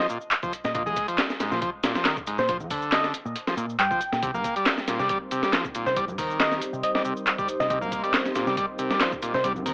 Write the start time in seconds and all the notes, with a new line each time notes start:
0.10 A#2, shaker
0.21 shaker
0.31 clap, closed hi-hat, shaker
0.43 F3, kick, shaker
0.53 closed hi-hat, shaker
0.64 A#2 D#5, snare, shaker
0.74 A#1 A#2 D#5, kick, closed hi-hat, shaker
0.86 F2 G#3, shaker
0.96 kick, closed hi-hat, shaker
1.08 F3, closed hi-hat, shaker
1.18 snare, clap, closed hi-hat, shaker
1.30 snare, shaker
1.40 G#2, snare, closed hi-hat, shaker
1.51 A#2 F3, snare, shaker
1.61 F3, kick, closed hi-hat, shaker
1.83 A#2, snare, closed hi-hat, shaker
1.95 F3, snare, shaker
2.05 D#3, snare, clap, closed hi-hat, shaker
2.17 kick, shaker
2.27 G#2, closed hi-hat, shaker
2.38 A#2 C5, snare, shaker
2.48 A#1 F3, kick, closed hi-hat, shaker
2.60 F2, shaker
2.70 D3, kick, open hi-hat, shaker
2.82 shaker
2.92 D#5, snare, clap, closed hi-hat, shaker
3.04 snare, shaker
3.14 closed hi-hat, shaker
3.25 A#2, shaker
3.36 closed hi-hat, shaker
3.47 F3, snare, shaker
3.57 A#2, shaker
3.70 shaker
3.79 G2 G5, clap, closed hi-hat, shaker
3.91 F3, kick, shaker
4.01 closed hi-hat, shaker
4.12 A#2, snare, shaker
4.22 C2 C3 G3 C4 D#4 A#4 C5, kick, closed hi-hat, shaker
4.34 G2 A#3, shaker
4.44 kick, closed hi-hat, shaker
4.56 G3, closed hi-hat, shaker
4.66 snare, clap, closed hi-hat, shaker
4.78 snare, shaker
4.88 A#2, snare, closed hi-hat, shaker
4.99 C3 G3, snare, shaker
5.09 G3, kick, closed hi-hat, shaker
5.31 C3, closed hi-hat, shaker
5.43 G3, snare, shaker
5.53 F3, snare, clap, closed hi-hat, shaker
5.65 kick, shaker
5.75 A#2, closed hi-hat, shaker
5.86 C3 C5, snare, shaker
5.96 C2 G3, kick, closed hi-hat, shaker
6.08 G2, shaker
6.18 D#3, kick, open hi-hat, shaker
6.30 shaker
6.40 D#5, snare, clap, closed hi-hat, shaker
6.52 snare, shaker
6.62 closed hi-hat, shaker
6.73 C3, shaker
6.83 D#5, closed hi-hat, shaker
6.95 G3 D#5, snare
7.05 C3, shaker
7.17 shaker
7.27 clap, closed hi-hat, shaker
7.38 G3, kick, shaker
7.48 closed hi-hat, shaker
7.60 C3 D#5, snare, shaker
7.70 C2 C3 D#5, kick, closed hi-hat, shaker
7.81 G2 A#3, shaker
7.92 kick, closed hi-hat, shaker
8.03 G3, closed hi-hat, shaker
8.14 snare, clap, closed hi-hat, shaker
8.26 snare, shaker
8.35 A#2, snare, closed hi-hat, shaker
8.47 C3 G3, snare, shaker
8.57 G3, kick, closed hi-hat, shaker
8.79 C3, closed hi-hat, shaker
8.90 G3, snare, shaker
9.01 F3, snare, clap, closed hi-hat, shaker
9.12 kick, shaker
9.22 A#2, closed hi-hat, shaker
9.34 C3 C5, snare, shaker
9.44 C2 G3, kick, closed hi-hat, shaker
9.55 G2, shaker
9.66 D#3, kick, open hi-hat, shaker